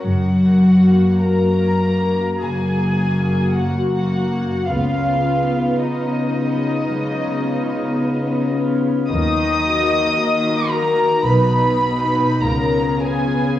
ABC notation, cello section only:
X:1
M:4/4
L:1/8
Q:1/4=54
K:F#
V:1 name="Cello section" clef=bass
F,,2 F,,2 F,,2 F,,2 | C,2 C,2 C,2 C,2 | D,2 D,2 B,,2 C,2 |]